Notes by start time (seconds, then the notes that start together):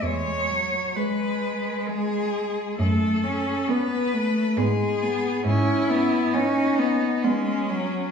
0.03 E2 G#3 C#5
0.49 F#3
0.95 G#3 B4
1.88 G#3 G#4
2.78 F#2 A3 A4
3.23 C#4
3.68 B3 B4
4.13 A3
4.57 G#2 G#3 B3 G#4
5.02 B3
5.45 G#2 C#4 E4
5.89 B3
6.33 B3 C#4 D#4
6.78 B3
7.23 G#3 B3 C#4
7.70 F#3